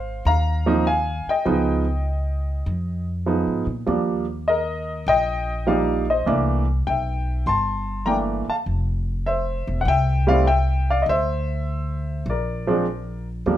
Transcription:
Already playing: G#1 C5 F5
0.25 D#2 F5 A#5
0.66 F3 A#3 C4 D#4
0.87 F5 G#5
1.27 D#5 G5, muted upright bass stroke
1.45 C#2 F3 G#3 B3 D#4
2.66 F2
3.26 F3 G#3 B3 D#4
3.47 G#2
3.67 A#2
3.87 D#2 F3 G3 A#3 D4
4.48 A#4 D#5
5.07 A#1 D#5 G5
5.67 F3 G3 A#3 D#4 D5 F5
6.10 C5 D#5
6.26 C2 E3 A3 A#3 D4
6.87 B1 E5 G5
7.46 G1 A5 C6
8.06 E3 A3 A#3 D4 G5 A#5
8.48 F5 A5, muted upright bass stroke
8.66 F1
9.26 C5 E5
9.67 E1
9.81 F#5
9.85 C2 E5 G5
10.27 G3 A3 C4 E4 D5 F5
10.47 E5 G5
10.90 D5 F5
11.02 D2 D#5
11.09 C5 E5
12.26 A#1 D5
12.31 A#4
12.67 F3 G#3 C4 D4
13.46 D#2 F3 G3 A#3 D4

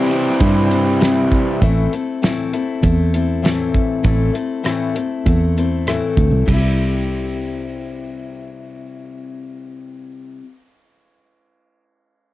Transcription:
Already playing: C3 E3 G3 C4 E4
0.10 C4 E4 G4, closed hi-hat
0.40 G2 G3 C4 E4 G4, kick, closed hi-hat
0.70 C4 E4 G4, closed hi-hat
1.00 C3 G3 C4 E4 G4, snare, closed hi-hat
1.32 kick, closed hi-hat
1.61 A1 A2 E3 A3 C4 E4 A4, kick, closed hi-hat
1.93 A3 C4 E4 A4, closed hi-hat
2.22 A2 E3 A3 C4 E4 A4, snare, closed hi-hat
2.53 A3 C4 E4 A4, closed hi-hat
2.82 E2 A3 C4 E4 A4, kick, closed hi-hat
3.14 A3 C4 E4 A4, closed hi-hat
3.42 A2 E3 A3 C4 E4 A4, snare, closed hi-hat
3.74 kick, closed hi-hat
4.03 A1 A2 E3 A3 C4 E4 A4, kick, closed hi-hat
4.33 A3 C4 E4 A4, closed hi-hat
4.63 A2 E3 A3 C4 E4 A4, cross-stick, closed hi-hat
4.95 A3 C4 E4 A4, closed hi-hat
5.26 E2 A3 C4 E4 A4, kick, closed hi-hat
5.57 A3 C4 E4 A4, closed hi-hat
5.87 A2 E3 A3 C4 E4 A4, cross-stick, closed hi-hat
6.17 D2, kick, closed hi-hat
6.31 C2
6.46 C2 C3 G3, kick, ride
6.51 C4 E4
6.56 G4

